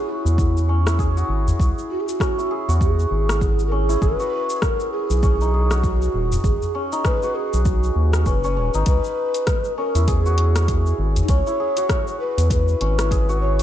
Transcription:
0.00 0.69 C#4 medium
0.00 0.86 E4 medium
0.00 1.17 F#4 medium
0.00 0.10 G#4 loud
0.00 0.99 G#4 medium
0.09 1.30 E4 medium
0.25 1.24 E2 medium
0.25 shaker medium
0.38 kick loud
0.38 shaker medium
0.57 shaker soft
0.69 2.20 C#4 medium
0.87 2.38 E4 medium
0.87 cross-stick medium
0.87 shaker medium
0.99 2.50 G#4 medium
0.99 kick medium
0.99 shaker soft
1.17 2.68 F#4 medium
1.17 shaker soft
1.29 1.53 G#1 medium
1.47 udu medium
1.47 shaker medium
1.59 1.73 C#2 medium
1.59 kick loud
1.59 shaker soft
1.79 shaker soft
1.91 2.01 F#4 loud
2.00 2.08 G#4 medium
2.07 2.51 F#4 loud
2.07 shaker medium
2.20 3.71 C#4 medium
2.20 kick loud
2.20 cross-stick medium
2.20 shaker medium
2.38 3.89 E4 medium
2.38 shaker soft
2.51 4.01 G#4 medium
2.69 3.06 E2 medium
2.69 4.19 F#4 medium
2.69 shaker medium
2.81 3.62 G#4 loud
2.81 kick loud
2.81 shaker medium
2.99 shaker soft
3.11 3.97 G#1 medium
3.29 cross-stick medium
3.29 shaker medium
3.41 kick loud
3.41 shaker medium
3.59 shaker soft
3.67 3.74 A#4 medium
3.72 5.23 C#4 medium
3.72 4.02 G#4 medium
3.89 5.47 E4 medium
3.89 shaker medium
4.02 4.15 G#1 medium
4.02 5.53 G#4 medium
4.02 4.57 B4 loud
4.02 kick loud
4.02 shaker medium
4.20 5.71 F#4 medium
4.20 shaker soft
4.50 shaker medium
4.57 4.64 B4 medium
4.62 4.91 A#4 loud
4.62 kick loud
4.62 cross-stick medium
4.62 shaker medium
4.80 shaker soft
4.92 5.79 G#4 loud
5.10 6.09 B1 medium
5.10 shaker medium
5.23 6.74 C#4 medium
5.23 kick loud
5.23 shaker medium
5.41 6.92 D#4 medium
5.41 shaker soft
5.54 7.05 G#4 medium
5.71 7.23 F#4 medium
5.71 cross-stick medium
5.71 shaker medium
5.83 6.46 F#4 medium
5.83 kick loud
5.83 shaker medium
6.02 shaker soft
6.14 6.38 D#1 medium
6.32 udu medium
6.32 shaker medium
6.44 6.57 G#1 medium
6.44 6.78 G#4 medium
6.44 kick loud
6.44 shaker medium
6.62 udu medium
6.62 shaker soft
6.75 8.26 C#4 medium
6.92 8.74 D#4 medium
6.92 shaker medium
7.05 10.08 G#4 medium
7.05 7.37 B4 loud
7.05 kick loud
7.05 cross-stick medium
7.05 shaker soft
7.23 10.26 F#4 medium
7.23 shaker soft
7.35 7.67 G#4 medium
7.54 7.91 B1 medium
7.54 shaker medium
7.65 8.29 F#4 medium
7.65 kick loud
7.65 shaker medium
7.84 shaker soft
7.96 8.25 D#2 medium
8.13 cross-stick medium
8.13 shaker medium
8.26 8.59 F#1 medium
8.26 8.44 C#4 medium
8.26 8.86 B4 loud
8.26 kick loud
8.26 shaker medium
8.44 8.56 C#4 medium
8.44 shaker soft
8.57 8.70 D#1 medium
8.57 9.77 C#4 medium
8.74 8.84 G#1 medium
8.74 10.01 D#4 medium
8.74 shaker medium
8.86 9.00 C#2 medium
8.86 9.74 B4 loud
8.86 kick loud
8.86 closed hi-hat soft
8.86 shaker soft
9.04 shaker soft
9.34 closed hi-hat soft
9.34 shaker medium
9.47 kick loud
9.47 cross-stick medium
9.47 closed hi-hat soft
9.47 shaker soft
9.65 shaker soft
9.78 11.29 C#4 medium
9.78 10.10 A#4 medium
9.95 10.94 E2 medium
9.95 11.46 E4 medium
9.95 closed hi-hat soft
9.95 shaker medium
10.08 11.59 G#4 medium
10.08 10.99 G#4 medium
10.08 kick loud
10.08 closed hi-hat soft
10.08 shaker medium
10.26 11.77 F#4 medium
10.26 shaker soft
10.38 closed hi-hat soft
10.56 cross-stick medium
10.56 closed hi-hat soft
10.56 shaker medium
10.68 kick loud
10.68 closed hi-hat medium
10.68 shaker soft
10.86 shaker soft
10.99 11.23 G#1 medium
11.16 closed hi-hat soft
11.16 udu medium
11.16 shaker medium
11.23 11.31 D#4 medium
11.29 11.42 C#2 loud
11.29 12.81 C#4 medium
11.29 12.19 C#5 loud
11.29 kick medium
11.29 closed hi-hat medium
11.29 shaker soft
11.47 12.98 E4 medium
11.47 shaker soft
11.60 13.11 G#4 medium
11.77 13.29 F#4 medium
11.77 closed hi-hat soft
11.77 shaker medium
11.89 kick medium
11.89 cross-stick medium
11.89 closed hi-hat soft
11.89 shaker soft
12.08 shaker soft
12.20 12.48 B4 medium
12.38 12.75 E2 medium
12.38 closed hi-hat soft
12.38 shaker medium
12.50 13.38 B4 loud
12.50 kick loud
12.50 closed hi-hat medium
12.50 shaker medium
12.68 shaker soft
12.81 13.63 G#1 medium
12.81 13.63 C#4 medium
12.81 closed hi-hat soft
12.99 13.63 E4 medium
12.99 cross-stick medium
12.99 closed hi-hat soft
12.99 shaker medium
13.11 13.63 G#4 medium
13.11 kick medium
13.11 closed hi-hat medium
13.11 shaker soft
13.29 13.63 F#4 medium
13.29 shaker soft
13.41 13.63 C#5 loud
13.59 closed hi-hat soft
13.59 shaker medium

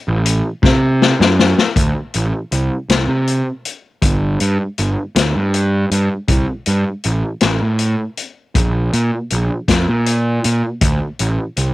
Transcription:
0.08 0.41 A1 medium
0.26 closed hi-hat medium
0.63 1.13 C3 medium
0.63 kick medium
0.63 snare medium
1.02 snare medium
1.20 1.53 F#2 medium
1.20 snare medium
1.39 snare medium
1.58 snare medium
1.76 1.93 D2 medium
1.76 kick loud
1.76 closed hi-hat medium
2.14 2.31 A1 medium
2.14 closed hi-hat medium
2.52 2.68 C2 medium
2.52 closed hi-hat medium
2.89 3.06 C2 medium
2.89 snare loud
2.89 closed hi-hat medium
3.08 3.41 C3 medium
3.27 closed hi-hat medium
3.65 closed hi-hat medium
4.02 4.36 G1 medium
4.02 kick loud
4.02 closed hi-hat medium
4.40 4.57 G2 medium
4.40 closed hi-hat medium
4.78 4.95 G1 medium
4.78 closed hi-hat medium
5.16 5.32 D2 medium
5.16 snare loud
5.16 closed hi-hat medium
5.35 5.85 G2 medium
5.54 closed hi-hat medium
5.91 6.08 G2 medium
5.91 closed hi-hat medium
6.28 6.45 C2 medium
6.28 kick loud
6.28 closed hi-hat medium
6.66 6.84 G2 medium
6.66 closed hi-hat medium
7.04 7.22 A1 medium
7.04 closed hi-hat soft
7.41 7.59 A1 medium
7.41 snare loud
7.41 closed hi-hat medium
7.62 7.95 A2 medium
7.79 closed hi-hat medium
8.17 closed hi-hat medium
8.55 8.89 A#1 medium
8.55 kick loud
8.55 closed hi-hat medium
8.93 9.10 A#2 medium
8.93 closed hi-hat medium
9.30 9.48 A#1 medium
9.30 closed hi-hat medium
9.68 9.85 F2 medium
9.68 kick medium
9.68 snare loud
9.68 closed hi-hat medium
9.89 10.38 A#2 medium
10.06 closed hi-hat medium
10.44 10.62 A#2 medium
10.44 closed hi-hat medium
10.81 10.99 D2 medium
10.81 kick medium
10.81 closed hi-hat medium
11.19 11.37 A1 medium
11.19 closed hi-hat medium
11.57 11.74 C2 medium
11.57 closed hi-hat medium

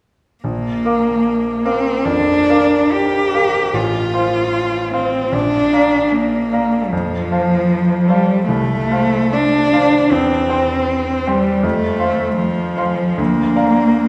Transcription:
0.44 0.83 A#1 soft
0.44 1.67 A#3 soft
0.85 1.62 A#4 soft
0.85 1.62 F5 soft
0.85 1.62 D6 soft
1.65 2.07 C4 soft
1.65 2.02 A#4 soft
1.65 2.02 F5 soft
1.65 2.02 D6 soft
2.05 2.48 F2 soft
2.05 2.94 D4 soft
2.49 3.31 A#4 soft
2.49 3.31 F5 soft
2.49 3.32 D6 soft
2.92 3.76 G4 soft
3.34 3.71 A#4 soft
3.34 3.70 F5 soft
3.34 3.71 D6 soft
3.73 4.13 A1 soft
3.73 4.93 F4 soft
4.14 4.89 C5 soft
4.14 4.89 F5 soft
4.14 4.90 C6 soft
4.93 5.35 C4 soft
4.93 5.29 C5 soft
4.93 5.29 F5 soft
4.93 5.29 C6 soft
5.32 5.71 A#1 soft
5.32 6.13 D4 medium
5.73 6.49 D5 soft
5.73 6.49 F5 soft
5.73 6.49 A#5 soft
6.11 6.92 A#3 soft
6.53 6.88 D5 soft
6.53 6.88 F5 soft
6.53 6.89 A#5 soft
6.91 7.30 F2 soft
6.91 8.09 F3 soft
7.31 8.05 C5 soft
7.31 8.06 F5 soft
7.31 8.06 A5 soft
8.08 8.47 G3 soft
8.08 8.44 C5 soft
8.08 8.45 F5 soft
8.08 8.45 A5 soft
8.47 8.89 C2 soft
8.47 9.34 A3 medium
8.91 9.69 C5 soft
8.91 9.69 F5 soft
8.91 9.69 A5 soft
9.33 10.12 D4 medium
9.73 10.07 C5 soft
9.73 10.07 F5 soft
9.73 10.07 A5 soft
10.10 10.47 E2 soft
10.10 11.29 C4 soft
10.49 11.23 C5 soft
10.49 11.23 G5 soft
10.49 11.23 C6 soft
11.27 11.66 G3 soft
11.27 11.60 C5 soft
11.27 11.61 G5 soft
11.27 11.61 C6 soft
11.63 11.99 F2 soft
11.63 12.36 A3 medium
11.99 12.73 C5 soft
11.99 12.73 F5 soft
11.99 12.73 C6 soft
12.37 13.21 F3 medium
12.76 13.14 C5 soft
12.76 13.15 F5 soft
12.76 13.15 C6 soft
13.18 13.56 D2 soft
13.18 14.08 A#3 medium
13.56 14.08 D5 soft
13.56 14.08 F5 soft
13.56 14.08 A#5 soft

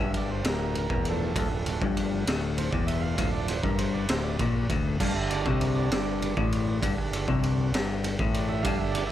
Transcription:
0.00 0.41 G1 loud
0.00 0.43 G2 loud
0.00 0.13 E5 medium
0.14 0.31 D5 medium
0.14 ride medium
0.14 high conga medium
0.29 0.46 C5 medium
0.29 low conga medium
0.44 0.86 D1 loud
0.44 0.89 D2 loud
0.44 snare loud
0.44 ride medium
0.48 0.77 A#4 medium
0.74 1.08 A#4 medium
0.74 ride medium
0.74 high conga medium
0.74 low conga medium
0.90 1.33 E1 loud
0.90 1.35 E2 loud
0.90 kick loud
1.05 ride medium
1.09 1.35 F3 soft
1.09 1.35 A3 soft
1.09 1.35 D4 medium
1.09 1.22 A4 medium
1.20 1.78 A4 medium
1.20 low conga medium
1.36 1.49 D1 medium
1.36 1.50 D2 loud
1.36 2.24 F3 medium
1.36 2.24 A3 medium
1.36 2.25 D4 medium
1.36 kick loud
1.36 ride loud
1.36 high conga medium
1.50 1.78 D1 medium
1.50 1.75 D2 medium
1.66 ride medium
1.66 low conga loud
1.82 2.24 G1 loud
1.82 2.26 G2 loud
1.82 kick loud
1.97 ride medium
1.97 high conga medium
2.13 low conga medium
2.26 2.69 D1 loud
2.26 2.72 D2 loud
2.26 snare loud
2.26 ride loud
2.58 2.73 C5 loud
2.58 ride medium
2.58 high conga medium
2.58 low conga medium
2.71 3.15 E1 medium
2.71 3.17 E2 loud
2.71 2.87 D5 medium
2.71 kick loud
2.87 3.03 E5 loud
2.87 ride medium
3.01 3.30 F5 medium
3.01 low conga medium
3.16 3.32 D1 medium
3.16 3.32 D2 loud
3.16 3.57 F3 medium
3.16 3.58 A3 soft
3.16 3.58 D4 medium
3.16 kick loud
3.16 ride loud
3.16 high conga loud
3.16 low conga soft
3.32 3.61 D1 medium
3.32 3.58 D2 medium
3.32 3.48 D5 medium
3.48 3.64 C5 medium
3.48 ride medium
3.48 low conga medium
3.63 4.06 G1 medium
3.63 4.08 G2 loud
3.63 3.79 A#4 medium
3.63 kick loud
3.78 3.94 C5 medium
3.78 ride medium
3.78 high conga medium
3.94 4.10 D5 medium
3.94 low conga medium
4.09 4.37 D1 loud
4.09 4.39 D2 loud
4.09 4.25 C5 medium
4.09 snare loud
4.09 ride loud
4.24 4.52 D5 medium
4.39 4.68 A#1 loud
4.39 4.69 A#2 loud
4.39 kick loud
4.39 ride medium
4.39 high conga medium
4.39 low conga medium
4.70 4.98 D1 loud
4.70 4.99 D2 loud
4.70 kick loud
4.70 ride medium
4.86 low conga medium
5.00 5.14 G1 medium
5.00 5.15 G2 loud
5.00 6.21 D3 medium
5.00 6.20 G3 medium
5.00 6.21 D4 medium
5.00 5.16 F5 loud
5.00 kick loud
5.00 crash loud
5.00 high conga medium
5.14 5.43 G1 medium
5.14 5.40 G2 medium
5.14 5.31 E5 loud
5.30 5.46 D5 medium
5.30 ride medium
5.30 low conga medium
5.46 5.88 C2 loud
5.46 5.91 C3 loud
5.46 5.61 C5 medium
5.46 kick loud
5.61 5.68 A#4 medium
5.61 ride medium
5.61 high conga medium
5.75 5.90 D5 medium
5.75 low conga medium
5.90 6.33 G1 loud
5.90 6.37 G2 loud
5.90 6.78 D5 medium
5.90 snare loud
5.90 ride medium
6.22 6.49 D3 soft
6.22 6.49 G3 soft
6.22 6.49 D4 medium
6.22 ride medium
6.22 high conga medium
6.22 low conga medium
6.37 6.80 A1 medium
6.37 6.82 A2 loud
6.37 kick loud
6.52 ride medium
6.67 low conga medium
6.81 6.97 G1 medium
6.81 6.97 G2 loud
6.81 7.69 D3 medium
6.81 7.69 G3 medium
6.81 7.70 D4 medium
6.81 kick loud
6.81 ride medium
6.81 high conga medium
6.97 7.26 G1 medium
7.13 ride medium
7.13 low conga medium
7.28 7.70 C2 medium
7.28 7.73 C3 loud
7.28 kick loud
7.43 ride medium
7.43 high conga medium
7.58 low conga medium
7.72 8.15 G1 loud
7.72 8.19 G2 loud
7.72 snare loud
7.72 ride loud
8.04 ride medium
8.04 high conga medium
8.04 low conga medium
8.19 8.62 A1 loud
8.19 8.64 A2 loud
8.19 kick loud
8.33 8.50 D5 loud
8.33 ride medium
8.49 8.65 E5 loud
8.49 low conga medium
8.63 8.78 G1 medium
8.63 8.80 G2 loud
8.63 9.04 D3 medium
8.63 9.04 G3 medium
8.63 9.04 D4 medium
8.63 8.79 F5 loud
8.63 kick loud
8.63 ride loud
8.63 high conga loud
8.79 9.08 G1 medium
8.79 9.05 G2 medium
8.79 8.95 E5 loud
8.92 9.09 D5 medium
8.92 ride medium
8.92 low conga loud
9.07 9.12 E5 loud

